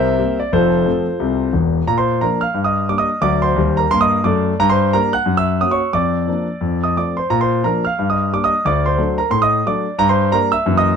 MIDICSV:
0, 0, Header, 1, 2, 480
1, 0, Start_track
1, 0, Key_signature, -2, "major"
1, 0, Tempo, 338219
1, 739, Time_signature, 4, 2, 24, 8
1, 15560, End_track
2, 0, Start_track
2, 0, Title_t, "Grand piano"
2, 0, Program_c, 0, 0
2, 0, Note_on_c, 0, 36, 65
2, 0, Note_on_c, 0, 48, 72
2, 0, Note_on_c, 0, 70, 76
2, 0, Note_on_c, 0, 72, 78
2, 0, Note_on_c, 0, 76, 104
2, 16, Control_c, 0, 64, 127
2, 202, Note_off_c, 0, 48, 0
2, 205, Note_off_c, 0, 36, 0
2, 267, Note_on_c, 0, 55, 38
2, 277, Note_on_c, 0, 60, 39
2, 278, Control_c, 0, 64, 0
2, 278, Note_on_c, 0, 58, 40
2, 518, Note_off_c, 0, 70, 0
2, 521, Note_off_c, 0, 72, 0
2, 529, Note_off_c, 0, 55, 0
2, 536, Note_off_c, 0, 60, 0
2, 537, Note_off_c, 0, 58, 0
2, 561, Note_on_c, 0, 74, 73
2, 567, Note_off_c, 0, 76, 0
2, 741, Note_on_c, 0, 29, 66
2, 746, Note_off_c, 0, 74, 0
2, 749, Note_on_c, 0, 41, 78
2, 752, Note_on_c, 0, 72, 81
2, 769, Note_on_c, 0, 69, 68
2, 770, Note_on_c, 0, 65, 55
2, 980, Control_c, 0, 64, 127
2, 1148, Note_off_c, 0, 29, 0
2, 1153, Note_off_c, 0, 41, 0
2, 1221, Note_on_c, 0, 53, 49
2, 1231, Note_on_c, 0, 60, 50
2, 1232, Note_on_c, 0, 57, 43
2, 1241, Control_c, 0, 64, 0
2, 1484, Note_off_c, 0, 53, 0
2, 1492, Note_off_c, 0, 60, 0
2, 1493, Note_off_c, 0, 57, 0
2, 1699, Note_on_c, 0, 36, 63
2, 1701, Note_on_c, 0, 48, 65
2, 2108, Note_off_c, 0, 36, 0
2, 2109, Note_off_c, 0, 48, 0
2, 2139, Note_off_c, 0, 65, 0
2, 2139, Note_off_c, 0, 69, 0
2, 2172, Note_on_c, 0, 28, 59
2, 2172, Note_on_c, 0, 40, 57
2, 2187, Note_off_c, 0, 72, 0
2, 2560, Note_off_c, 0, 28, 0
2, 2560, Note_off_c, 0, 40, 0
2, 2660, Note_on_c, 0, 46, 64
2, 2661, Note_on_c, 0, 82, 82
2, 2805, Note_off_c, 0, 82, 0
2, 2805, Note_on_c, 0, 84, 77
2, 2819, Note_on_c, 0, 72, 58
2, 2909, Control_c, 0, 64, 127
2, 3069, Note_off_c, 0, 46, 0
2, 3126, Note_off_c, 0, 72, 0
2, 3140, Note_on_c, 0, 53, 38
2, 3140, Note_on_c, 0, 82, 73
2, 3142, Note_off_c, 0, 84, 0
2, 3148, Note_on_c, 0, 62, 43
2, 3154, Note_on_c, 0, 58, 45
2, 3158, Control_c, 0, 64, 0
2, 3163, Note_on_c, 0, 70, 59
2, 3404, Note_off_c, 0, 53, 0
2, 3411, Note_off_c, 0, 62, 0
2, 3415, Note_off_c, 0, 58, 0
2, 3419, Note_on_c, 0, 89, 78
2, 3421, Note_off_c, 0, 70, 0
2, 3429, Note_off_c, 0, 82, 0
2, 3444, Note_on_c, 0, 77, 56
2, 3605, Note_on_c, 0, 43, 64
2, 3750, Note_off_c, 0, 77, 0
2, 3753, Note_on_c, 0, 87, 71
2, 3761, Note_off_c, 0, 89, 0
2, 3775, Note_on_c, 0, 75, 49
2, 3879, Control_c, 0, 64, 127
2, 4021, Note_off_c, 0, 43, 0
2, 4084, Note_off_c, 0, 75, 0
2, 4096, Note_off_c, 0, 87, 0
2, 4101, Note_on_c, 0, 58, 39
2, 4103, Note_on_c, 0, 55, 34
2, 4105, Note_on_c, 0, 86, 73
2, 4107, Note_on_c, 0, 62, 36
2, 4114, Control_c, 0, 64, 0
2, 4231, Note_on_c, 0, 87, 75
2, 4247, Note_on_c, 0, 75, 60
2, 4248, Note_off_c, 0, 86, 0
2, 4366, Note_off_c, 0, 58, 0
2, 4367, Note_off_c, 0, 55, 0
2, 4370, Note_off_c, 0, 62, 0
2, 4559, Note_off_c, 0, 75, 0
2, 4560, Note_on_c, 0, 38, 67
2, 4565, Note_on_c, 0, 86, 94
2, 4575, Note_off_c, 0, 87, 0
2, 4578, Note_on_c, 0, 74, 72
2, 4584, Note_on_c, 0, 54, 65
2, 4837, Control_c, 0, 64, 127
2, 4849, Note_off_c, 0, 74, 0
2, 4854, Note_on_c, 0, 84, 78
2, 4862, Note_off_c, 0, 86, 0
2, 4878, Note_on_c, 0, 72, 56
2, 4954, Note_off_c, 0, 38, 0
2, 4968, Note_off_c, 0, 54, 0
2, 5051, Note_on_c, 0, 39, 68
2, 5077, Control_c, 0, 64, 0
2, 5078, Note_on_c, 0, 55, 70
2, 5322, Note_off_c, 0, 72, 0
2, 5343, Note_off_c, 0, 84, 0
2, 5351, Note_on_c, 0, 82, 79
2, 5374, Note_on_c, 0, 70, 56
2, 5441, Note_off_c, 0, 39, 0
2, 5457, Note_off_c, 0, 55, 0
2, 5540, Note_on_c, 0, 43, 63
2, 5543, Note_off_c, 0, 70, 0
2, 5544, Note_off_c, 0, 82, 0
2, 5548, Note_on_c, 0, 84, 101
2, 5566, Note_on_c, 0, 58, 72
2, 5686, Note_on_c, 0, 87, 88
2, 5690, Note_off_c, 0, 84, 0
2, 5704, Note_on_c, 0, 75, 66
2, 5926, Note_off_c, 0, 43, 0
2, 5942, Note_off_c, 0, 58, 0
2, 6009, Note_off_c, 0, 75, 0
2, 6016, Note_on_c, 0, 42, 65
2, 6019, Note_on_c, 0, 86, 73
2, 6024, Note_off_c, 0, 87, 0
2, 6042, Note_on_c, 0, 74, 62
2, 6044, Note_on_c, 0, 57, 74
2, 6404, Note_off_c, 0, 42, 0
2, 6420, Note_off_c, 0, 57, 0
2, 6481, Note_off_c, 0, 74, 0
2, 6502, Note_off_c, 0, 86, 0
2, 6522, Note_on_c, 0, 43, 90
2, 6525, Note_on_c, 0, 82, 101
2, 6659, Note_off_c, 0, 82, 0
2, 6665, Note_on_c, 0, 84, 89
2, 6692, Note_on_c, 0, 72, 74
2, 6745, Control_c, 0, 64, 127
2, 6923, Note_off_c, 0, 43, 0
2, 6985, Note_off_c, 0, 72, 0
2, 6993, Note_off_c, 0, 84, 0
2, 6999, Note_on_c, 0, 55, 42
2, 7001, Note_on_c, 0, 82, 90
2, 7007, Control_c, 0, 64, 0
2, 7007, Note_on_c, 0, 58, 50
2, 7014, Note_on_c, 0, 62, 50
2, 7016, Note_on_c, 0, 70, 73
2, 7259, Note_off_c, 0, 55, 0
2, 7265, Note_off_c, 0, 58, 0
2, 7270, Note_off_c, 0, 62, 0
2, 7270, Note_off_c, 0, 70, 0
2, 7281, Note_off_c, 0, 82, 0
2, 7283, Note_on_c, 0, 90, 86
2, 7301, Note_on_c, 0, 78, 66
2, 7461, Note_on_c, 0, 42, 74
2, 7601, Note_off_c, 0, 78, 0
2, 7614, Note_off_c, 0, 90, 0
2, 7627, Note_on_c, 0, 88, 85
2, 7646, Note_on_c, 0, 76, 64
2, 7712, Control_c, 0, 64, 127
2, 7871, Note_off_c, 0, 42, 0
2, 7942, Note_off_c, 0, 76, 0
2, 7954, Note_off_c, 0, 88, 0
2, 7960, Note_on_c, 0, 58, 38
2, 7962, Note_on_c, 0, 87, 80
2, 7963, Note_on_c, 0, 61, 37
2, 7964, Control_c, 0, 64, 0
2, 7968, Note_on_c, 0, 66, 44
2, 8098, Note_off_c, 0, 87, 0
2, 8108, Note_on_c, 0, 85, 83
2, 8119, Note_on_c, 0, 73, 52
2, 8220, Note_off_c, 0, 58, 0
2, 8222, Note_off_c, 0, 61, 0
2, 8226, Note_off_c, 0, 66, 0
2, 8418, Note_off_c, 0, 73, 0
2, 8419, Note_on_c, 0, 41, 60
2, 8420, Note_on_c, 0, 86, 89
2, 8435, Note_off_c, 0, 85, 0
2, 8440, Note_on_c, 0, 74, 69
2, 8679, Control_c, 0, 64, 127
2, 8830, Note_off_c, 0, 41, 0
2, 8899, Note_on_c, 0, 53, 38
2, 8908, Note_on_c, 0, 58, 41
2, 8919, Control_c, 0, 64, 0
2, 8921, Note_on_c, 0, 62, 39
2, 9165, Note_off_c, 0, 53, 0
2, 9171, Note_off_c, 0, 58, 0
2, 9181, Note_off_c, 0, 62, 0
2, 9380, Note_on_c, 0, 41, 62
2, 9624, Note_off_c, 0, 74, 0
2, 9626, Control_c, 0, 64, 127
2, 9671, Note_off_c, 0, 86, 0
2, 9701, Note_on_c, 0, 87, 66
2, 9716, Note_on_c, 0, 75, 50
2, 9790, Note_off_c, 0, 41, 0
2, 9875, Note_off_c, 0, 75, 0
2, 9879, Note_off_c, 0, 87, 0
2, 9885, Note_on_c, 0, 57, 28
2, 9886, Control_c, 0, 64, 0
2, 9890, Note_on_c, 0, 53, 31
2, 9896, Note_on_c, 0, 86, 66
2, 9898, Note_on_c, 0, 60, 32
2, 9914, Note_on_c, 0, 74, 52
2, 10144, Note_off_c, 0, 57, 0
2, 10147, Note_off_c, 0, 53, 0
2, 10153, Note_off_c, 0, 60, 0
2, 10159, Note_off_c, 0, 74, 0
2, 10168, Note_off_c, 0, 86, 0
2, 10173, Note_on_c, 0, 84, 66
2, 10201, Note_on_c, 0, 72, 49
2, 10355, Note_off_c, 0, 84, 0
2, 10357, Note_off_c, 0, 72, 0
2, 10361, Note_on_c, 0, 46, 78
2, 10363, Note_on_c, 0, 82, 80
2, 10498, Note_off_c, 0, 82, 0
2, 10515, Note_on_c, 0, 84, 75
2, 10536, Note_on_c, 0, 72, 57
2, 10599, Control_c, 0, 64, 127
2, 10762, Note_off_c, 0, 46, 0
2, 10826, Note_off_c, 0, 72, 0
2, 10837, Note_on_c, 0, 53, 39
2, 10838, Note_off_c, 0, 84, 0
2, 10838, Control_c, 0, 64, 0
2, 10844, Note_on_c, 0, 58, 45
2, 10846, Note_on_c, 0, 82, 70
2, 10851, Note_on_c, 0, 62, 42
2, 10868, Note_on_c, 0, 70, 60
2, 11097, Note_off_c, 0, 53, 0
2, 11102, Note_off_c, 0, 58, 0
2, 11107, Note_off_c, 0, 62, 0
2, 11115, Note_off_c, 0, 70, 0
2, 11123, Note_off_c, 0, 82, 0
2, 11135, Note_on_c, 0, 89, 70
2, 11161, Note_on_c, 0, 77, 61
2, 11334, Note_on_c, 0, 43, 66
2, 11451, Note_off_c, 0, 77, 0
2, 11459, Note_off_c, 0, 89, 0
2, 11492, Note_on_c, 0, 87, 71
2, 11508, Note_on_c, 0, 75, 48
2, 11544, Control_c, 0, 64, 127
2, 11729, Note_off_c, 0, 43, 0
2, 11792, Note_off_c, 0, 75, 0
2, 11805, Control_c, 0, 64, 0
2, 11806, Note_off_c, 0, 87, 0
2, 11819, Note_on_c, 0, 55, 39
2, 11827, Note_on_c, 0, 58, 34
2, 11831, Note_on_c, 0, 86, 76
2, 11833, Note_on_c, 0, 62, 36
2, 11951, Note_off_c, 0, 86, 0
2, 11978, Note_on_c, 0, 87, 84
2, 11992, Note_on_c, 0, 75, 61
2, 12073, Note_off_c, 0, 55, 0
2, 12079, Note_off_c, 0, 58, 0
2, 12083, Note_off_c, 0, 62, 0
2, 12274, Note_off_c, 0, 75, 0
2, 12280, Note_on_c, 0, 38, 70
2, 12287, Note_on_c, 0, 86, 89
2, 12289, Note_off_c, 0, 87, 0
2, 12309, Note_on_c, 0, 74, 75
2, 12507, Control_c, 0, 64, 127
2, 12555, Note_off_c, 0, 74, 0
2, 12563, Note_off_c, 0, 86, 0
2, 12571, Note_on_c, 0, 84, 75
2, 12591, Note_on_c, 0, 72, 57
2, 12680, Note_off_c, 0, 38, 0
2, 12749, Note_on_c, 0, 54, 49
2, 12749, Note_on_c, 0, 57, 49
2, 12759, Note_on_c, 0, 62, 44
2, 12762, Control_c, 0, 64, 0
2, 13011, Note_off_c, 0, 54, 0
2, 13011, Note_off_c, 0, 57, 0
2, 13018, Note_off_c, 0, 62, 0
2, 13018, Note_off_c, 0, 72, 0
2, 13028, Note_on_c, 0, 82, 71
2, 13040, Note_off_c, 0, 84, 0
2, 13049, Note_on_c, 0, 70, 54
2, 13204, Note_on_c, 0, 45, 67
2, 13213, Note_on_c, 0, 84, 90
2, 13219, Note_off_c, 0, 70, 0
2, 13221, Note_off_c, 0, 82, 0
2, 13361, Note_off_c, 0, 84, 0
2, 13366, Note_on_c, 0, 87, 90
2, 13385, Note_on_c, 0, 75, 69
2, 13619, Note_off_c, 0, 45, 0
2, 13688, Note_off_c, 0, 75, 0
2, 13702, Note_off_c, 0, 87, 0
2, 13711, Note_on_c, 0, 54, 37
2, 13715, Note_on_c, 0, 57, 44
2, 13723, Note_on_c, 0, 86, 71
2, 13724, Note_on_c, 0, 62, 42
2, 13733, Note_on_c, 0, 74, 57
2, 13972, Note_off_c, 0, 54, 0
2, 13975, Note_off_c, 0, 57, 0
2, 13981, Note_off_c, 0, 62, 0
2, 14164, Note_off_c, 0, 74, 0
2, 14170, Note_on_c, 0, 43, 88
2, 14175, Note_on_c, 0, 82, 99
2, 14191, Note_off_c, 0, 86, 0
2, 14322, Note_off_c, 0, 82, 0
2, 14323, Note_on_c, 0, 84, 86
2, 14337, Note_on_c, 0, 72, 69
2, 14429, Control_c, 0, 64, 127
2, 14582, Note_off_c, 0, 43, 0
2, 14635, Note_on_c, 0, 55, 44
2, 14644, Note_off_c, 0, 72, 0
2, 14646, Note_on_c, 0, 58, 46
2, 14649, Note_on_c, 0, 82, 94
2, 14654, Note_on_c, 0, 62, 50
2, 14659, Note_off_c, 0, 84, 0
2, 14669, Note_on_c, 0, 70, 68
2, 14677, Control_c, 0, 64, 0
2, 14906, Note_off_c, 0, 55, 0
2, 14913, Note_off_c, 0, 58, 0
2, 14919, Note_off_c, 0, 62, 0
2, 14927, Note_on_c, 0, 88, 89
2, 14932, Note_off_c, 0, 70, 0
2, 14942, Note_off_c, 0, 82, 0
2, 14946, Note_on_c, 0, 76, 70
2, 15122, Note_on_c, 0, 52, 46
2, 15130, Note_on_c, 0, 42, 78
2, 15139, Note_on_c, 0, 58, 48
2, 15148, Note_on_c, 0, 64, 41
2, 15259, Note_off_c, 0, 76, 0
2, 15273, Note_off_c, 0, 88, 0
2, 15291, Note_on_c, 0, 87, 89
2, 15306, Note_on_c, 0, 75, 77
2, 15387, Control_c, 0, 64, 127
2, 15391, Note_off_c, 0, 52, 0
2, 15403, Note_off_c, 0, 58, 0
2, 15409, Note_off_c, 0, 64, 0
2, 15542, Note_off_c, 0, 42, 0
2, 15560, Note_off_c, 0, 75, 0
2, 15560, Note_off_c, 0, 87, 0
2, 15560, End_track
0, 0, End_of_file